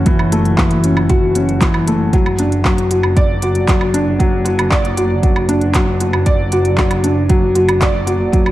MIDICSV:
0, 0, Header, 1, 4, 480
1, 0, Start_track
1, 0, Tempo, 517241
1, 58, Time_signature, 4, 2, 24, 8
1, 7903, End_track
2, 0, Start_track
2, 0, Title_t, "Felt piano"
2, 0, Program_c, 0, 0
2, 0, Control_c, 0, 64, 127
2, 0, Note_on_c, 0, 52, 97
2, 0, Note_on_c, 0, 57, 74
2, 0, Note_on_c, 0, 61, 82
2, 0, Note_on_c, 0, 66, 101
2, 58, Note_off_c, 0, 52, 0
2, 58, Note_on_c, 0, 52, 102
2, 286, Note_off_c, 0, 52, 0
2, 298, Note_off_c, 0, 57, 0
2, 298, Note_on_c, 0, 57, 82
2, 526, Note_off_c, 0, 57, 0
2, 542, Note_on_c, 0, 52, 96
2, 768, Note_off_c, 0, 52, 0
2, 779, Note_off_c, 0, 61, 0
2, 779, Note_on_c, 0, 61, 70
2, 1006, Note_off_c, 0, 61, 0
2, 1016, Note_off_c, 0, 66, 0
2, 1016, Note_on_c, 0, 66, 97
2, 1245, Note_off_c, 0, 66, 0
2, 1259, Note_on_c, 0, 61, 74
2, 1487, Note_off_c, 0, 61, 0
2, 1499, Note_on_c, 0, 52, 95
2, 1726, Note_off_c, 0, 52, 0
2, 1740, Note_on_c, 0, 57, 78
2, 1967, Note_off_c, 0, 57, 0
2, 1977, Note_on_c, 0, 54, 97
2, 1988, Control_c, 0, 64, 0
2, 2169, Control_c, 0, 64, 127
2, 2206, Note_off_c, 0, 54, 0
2, 2221, Note_on_c, 0, 62, 76
2, 2447, Note_off_c, 0, 62, 0
2, 2457, Note_on_c, 0, 54, 93
2, 2685, Note_off_c, 0, 54, 0
2, 2700, Note_on_c, 0, 66, 67
2, 2927, Note_off_c, 0, 66, 0
2, 2937, Note_on_c, 0, 74, 105
2, 3165, Note_off_c, 0, 74, 0
2, 3181, Note_on_c, 0, 66, 79
2, 3408, Note_off_c, 0, 66, 0
2, 3418, Note_on_c, 0, 54, 96
2, 3646, Note_off_c, 0, 54, 0
2, 3655, Note_on_c, 0, 62, 80
2, 3885, Note_off_c, 0, 62, 0
2, 3893, Note_on_c, 0, 54, 104
2, 4123, Note_off_c, 0, 54, 0
2, 4127, Note_on_c, 0, 66, 84
2, 4360, Note_off_c, 0, 66, 0
2, 4372, Note_on_c, 0, 74, 97
2, 4603, Note_off_c, 0, 74, 0
2, 4616, Note_on_c, 0, 66, 78
2, 4845, Note_off_c, 0, 66, 0
2, 4854, Note_on_c, 0, 54, 94
2, 5084, Note_off_c, 0, 54, 0
2, 5092, Note_on_c, 0, 62, 84
2, 5323, Note_off_c, 0, 62, 0
2, 5332, Note_on_c, 0, 54, 98
2, 5563, Note_off_c, 0, 54, 0
2, 5576, Note_on_c, 0, 66, 80
2, 5805, Note_off_c, 0, 66, 0
2, 5810, Note_on_c, 0, 74, 103
2, 6042, Note_off_c, 0, 74, 0
2, 6055, Note_on_c, 0, 66, 85
2, 6284, Note_off_c, 0, 66, 0
2, 6294, Note_on_c, 0, 54, 99
2, 6524, Note_off_c, 0, 54, 0
2, 6532, Note_on_c, 0, 62, 72
2, 6763, Note_off_c, 0, 62, 0
2, 6768, Note_on_c, 0, 54, 104
2, 7001, Note_off_c, 0, 54, 0
2, 7009, Note_on_c, 0, 66, 81
2, 7241, Note_off_c, 0, 66, 0
2, 7251, Note_on_c, 0, 74, 98
2, 7482, Note_off_c, 0, 74, 0
2, 7486, Note_on_c, 0, 66, 82
2, 7720, Note_off_c, 0, 66, 0
2, 7724, Note_on_c, 0, 54, 99
2, 7903, Note_off_c, 0, 54, 0
2, 7903, End_track
3, 0, Start_track
3, 0, Title_t, "Double bass section"
3, 0, Program_c, 1, 48
3, 0, Note_on_c, 1, 30, 89
3, 1953, Note_off_c, 1, 30, 0
3, 1978, Note_on_c, 1, 30, 92
3, 7903, Note_off_c, 1, 30, 0
3, 7903, End_track
4, 0, Start_track
4, 0, Title_t, "Drums"
4, 55, Note_on_c, 9, 42, 44
4, 58, Note_on_c, 9, 36, 102
4, 148, Note_off_c, 9, 42, 0
4, 151, Note_off_c, 9, 36, 0
4, 179, Note_on_c, 9, 77, 62
4, 272, Note_off_c, 9, 77, 0
4, 299, Note_on_c, 9, 42, 67
4, 392, Note_off_c, 9, 42, 0
4, 421, Note_on_c, 9, 42, 31
4, 514, Note_off_c, 9, 42, 0
4, 538, Note_on_c, 9, 36, 107
4, 538, Note_on_c, 9, 39, 93
4, 631, Note_off_c, 9, 36, 0
4, 631, Note_off_c, 9, 39, 0
4, 656, Note_on_c, 9, 42, 42
4, 748, Note_off_c, 9, 42, 0
4, 777, Note_on_c, 9, 42, 66
4, 870, Note_off_c, 9, 42, 0
4, 898, Note_on_c, 9, 77, 60
4, 991, Note_off_c, 9, 77, 0
4, 1016, Note_on_c, 9, 42, 41
4, 1019, Note_on_c, 9, 36, 111
4, 1109, Note_off_c, 9, 42, 0
4, 1112, Note_off_c, 9, 36, 0
4, 1256, Note_on_c, 9, 42, 64
4, 1348, Note_off_c, 9, 42, 0
4, 1380, Note_on_c, 9, 42, 29
4, 1473, Note_off_c, 9, 42, 0
4, 1499, Note_on_c, 9, 36, 113
4, 1499, Note_on_c, 9, 39, 85
4, 1499, Note_on_c, 9, 42, 44
4, 1592, Note_off_c, 9, 36, 0
4, 1592, Note_off_c, 9, 39, 0
4, 1592, Note_off_c, 9, 42, 0
4, 1616, Note_on_c, 9, 77, 67
4, 1709, Note_off_c, 9, 77, 0
4, 1740, Note_on_c, 9, 42, 65
4, 1833, Note_off_c, 9, 42, 0
4, 1978, Note_on_c, 9, 42, 43
4, 1979, Note_on_c, 9, 36, 99
4, 2071, Note_off_c, 9, 42, 0
4, 2072, Note_off_c, 9, 36, 0
4, 2099, Note_on_c, 9, 77, 61
4, 2191, Note_off_c, 9, 77, 0
4, 2214, Note_on_c, 9, 42, 65
4, 2306, Note_off_c, 9, 42, 0
4, 2340, Note_on_c, 9, 42, 30
4, 2433, Note_off_c, 9, 42, 0
4, 2459, Note_on_c, 9, 36, 101
4, 2459, Note_on_c, 9, 39, 89
4, 2552, Note_off_c, 9, 36, 0
4, 2552, Note_off_c, 9, 39, 0
4, 2582, Note_on_c, 9, 42, 38
4, 2675, Note_off_c, 9, 42, 0
4, 2698, Note_on_c, 9, 42, 67
4, 2791, Note_off_c, 9, 42, 0
4, 2815, Note_on_c, 9, 77, 58
4, 2908, Note_off_c, 9, 77, 0
4, 2938, Note_on_c, 9, 42, 39
4, 2939, Note_on_c, 9, 36, 111
4, 3031, Note_off_c, 9, 42, 0
4, 3032, Note_off_c, 9, 36, 0
4, 3176, Note_on_c, 9, 42, 62
4, 3269, Note_off_c, 9, 42, 0
4, 3296, Note_on_c, 9, 42, 29
4, 3388, Note_off_c, 9, 42, 0
4, 3418, Note_on_c, 9, 39, 86
4, 3418, Note_on_c, 9, 42, 39
4, 3419, Note_on_c, 9, 36, 113
4, 3511, Note_off_c, 9, 39, 0
4, 3511, Note_off_c, 9, 42, 0
4, 3512, Note_off_c, 9, 36, 0
4, 3536, Note_on_c, 9, 77, 60
4, 3629, Note_off_c, 9, 77, 0
4, 3657, Note_on_c, 9, 42, 65
4, 3750, Note_off_c, 9, 42, 0
4, 3898, Note_on_c, 9, 42, 40
4, 3899, Note_on_c, 9, 36, 89
4, 3991, Note_off_c, 9, 36, 0
4, 3991, Note_off_c, 9, 42, 0
4, 4135, Note_on_c, 9, 42, 62
4, 4228, Note_off_c, 9, 42, 0
4, 4258, Note_on_c, 9, 42, 32
4, 4258, Note_on_c, 9, 77, 70
4, 4351, Note_off_c, 9, 42, 0
4, 4351, Note_off_c, 9, 77, 0
4, 4375, Note_on_c, 9, 39, 93
4, 4377, Note_on_c, 9, 36, 97
4, 4467, Note_off_c, 9, 39, 0
4, 4470, Note_off_c, 9, 36, 0
4, 4500, Note_on_c, 9, 42, 38
4, 4592, Note_off_c, 9, 42, 0
4, 4616, Note_on_c, 9, 42, 64
4, 4709, Note_off_c, 9, 42, 0
4, 4855, Note_on_c, 9, 42, 42
4, 4856, Note_on_c, 9, 36, 108
4, 4948, Note_off_c, 9, 42, 0
4, 4949, Note_off_c, 9, 36, 0
4, 4975, Note_on_c, 9, 77, 63
4, 5067, Note_off_c, 9, 77, 0
4, 5093, Note_on_c, 9, 42, 64
4, 5186, Note_off_c, 9, 42, 0
4, 5210, Note_on_c, 9, 42, 28
4, 5303, Note_off_c, 9, 42, 0
4, 5331, Note_on_c, 9, 39, 87
4, 5331, Note_on_c, 9, 42, 42
4, 5335, Note_on_c, 9, 36, 101
4, 5424, Note_off_c, 9, 39, 0
4, 5424, Note_off_c, 9, 42, 0
4, 5428, Note_off_c, 9, 36, 0
4, 5572, Note_on_c, 9, 42, 61
4, 5665, Note_off_c, 9, 42, 0
4, 5692, Note_on_c, 9, 77, 65
4, 5785, Note_off_c, 9, 77, 0
4, 5810, Note_on_c, 9, 42, 39
4, 5813, Note_on_c, 9, 36, 97
4, 5903, Note_off_c, 9, 42, 0
4, 5906, Note_off_c, 9, 36, 0
4, 6050, Note_on_c, 9, 42, 62
4, 6143, Note_off_c, 9, 42, 0
4, 6171, Note_on_c, 9, 42, 30
4, 6263, Note_off_c, 9, 42, 0
4, 6288, Note_on_c, 9, 39, 95
4, 6293, Note_on_c, 9, 36, 94
4, 6381, Note_off_c, 9, 39, 0
4, 6386, Note_off_c, 9, 36, 0
4, 6410, Note_on_c, 9, 42, 39
4, 6410, Note_on_c, 9, 77, 58
4, 6503, Note_off_c, 9, 42, 0
4, 6503, Note_off_c, 9, 77, 0
4, 6532, Note_on_c, 9, 42, 60
4, 6625, Note_off_c, 9, 42, 0
4, 6770, Note_on_c, 9, 42, 40
4, 6773, Note_on_c, 9, 36, 106
4, 6863, Note_off_c, 9, 42, 0
4, 6866, Note_off_c, 9, 36, 0
4, 7010, Note_on_c, 9, 42, 62
4, 7103, Note_off_c, 9, 42, 0
4, 7132, Note_on_c, 9, 42, 28
4, 7132, Note_on_c, 9, 77, 69
4, 7225, Note_off_c, 9, 42, 0
4, 7225, Note_off_c, 9, 77, 0
4, 7253, Note_on_c, 9, 36, 102
4, 7253, Note_on_c, 9, 39, 95
4, 7253, Note_on_c, 9, 42, 41
4, 7345, Note_off_c, 9, 36, 0
4, 7346, Note_off_c, 9, 39, 0
4, 7346, Note_off_c, 9, 42, 0
4, 7491, Note_on_c, 9, 42, 62
4, 7584, Note_off_c, 9, 42, 0
4, 7733, Note_on_c, 9, 42, 40
4, 7734, Note_on_c, 9, 36, 96
4, 7826, Note_off_c, 9, 42, 0
4, 7827, Note_off_c, 9, 36, 0
4, 7853, Note_on_c, 9, 77, 66
4, 7903, Note_off_c, 9, 77, 0
4, 7903, End_track
0, 0, End_of_file